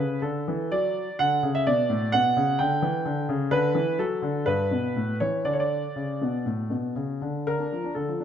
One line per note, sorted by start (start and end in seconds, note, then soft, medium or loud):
0.00 0.21 C#3 soft
0.00 0.19 B4 medium
0.22 0.45 D3 soft
0.22 0.71 A4 soft
0.48 0.70 E3 soft
0.71 1.06 F#3 soft
0.71 1.15 D5 medium
1.19 1.42 D3 soft
1.19 1.40 F#5 medium
1.43 1.65 C#3 medium
1.55 1.66 E5 medium
1.67 1.89 B2 medium
1.67 2.09 D5 medium
1.90 2.12 A2 medium
2.12 2.36 B2 medium
2.12 2.59 F#5 medium
2.36 2.59 C#3 medium
2.59 2.82 D3 medium
2.59 3.25 G5 medium
2.82 3.05 E3 medium
3.05 3.28 D3 medium
3.29 3.51 C#3 medium
3.51 3.74 D3 medium
3.51 3.99 B4 medium
3.75 3.98 E3 soft
3.99 4.22 F#3 medium
3.99 4.46 A4 medium
4.22 4.45 D3 soft
4.46 4.69 G2 soft
4.46 5.15 B4 medium
4.71 4.94 B2 soft
4.96 5.19 A2 soft
5.20 5.44 E3 soft
5.20 5.45 C#5 medium
5.45 5.81 D3 soft
5.45 5.52 D5 medium
5.53 5.60 C#5 medium
5.60 6.42 D5 medium
5.96 6.20 C#3 soft
6.22 6.45 B2 soft
6.46 6.70 A2 soft
6.70 6.94 B2 soft
6.96 7.20 C#3 soft
7.22 7.45 D3 soft
7.47 7.59 D3 soft
7.47 7.92 A#4 medium
7.60 7.72 D4 soft
7.72 7.85 F3 soft
7.84 7.96 D4 soft
7.95 8.07 D3 soft
7.95 8.24 A4 soft
8.08 8.20 F3 soft
8.20 8.24 D4 soft